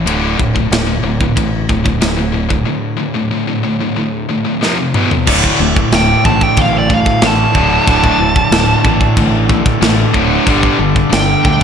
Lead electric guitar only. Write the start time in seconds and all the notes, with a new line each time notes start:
5.95 G5
6.25 A5
6.43 G5
6.62 F5
6.78 D5
6.94 F5
7.27 A5
11.14 G5
11.46 G5